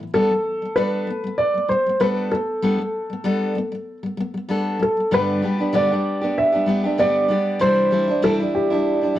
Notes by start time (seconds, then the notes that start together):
0.00 A2 E3
0.13 G3 B3 D4 A4
0.31 G3 B3
0.62 G3 B3
0.76 G3 B3 D4 A4 B4
1.07 G3 B3
1.24 G3 B3
1.38 D5
1.54 G3 B3
1.69 G3 B3 C5
1.87 G3 B3
2.00 G3 B3 D4 A4 B4
2.31 G3 B3 A4
2.62 G3 B3 D4 A4
2.79 G3 B3
3.10 G3 B3
3.24 G3 B3 D4 A4
3.55 G3 B3
3.72 G3 B3
4.03 G3 B3
4.17 G3 B3
4.34 G3 B3
4.49 G3 B3 D4 A4
4.79 G3 B3 A4
4.97 G3 B3
5.11 G2 D3 G3 B3 D4 G4 B4
5.42 G3 B3 D4 G4
5.58 G3 B3 D4 G4
5.73 G2 D3 G3 B3 D4 G4 D5
5.90 G3 B3 D4 G4
6.21 G3 B3 D4 G4
6.38 E5
6.52 G3 B3 D4 G4
6.66 G3 B3 D4 G4
6.83 G3 B3 D4 G4
6.97 G2 D3 G3 B3 D4 G4 D5
7.29 G3 B3 D4 G4
7.59 C3 E3 G3 D4 E4 C5
7.91 E3 G3 D4 E4
8.07 G3 D4 E4
8.22 C3 E3 G3 D4 E4 A4
8.39 G3 D4 E4
8.55 G4
8.70 G3 D4 E4
9.01 G3 D4 E4
9.15 E3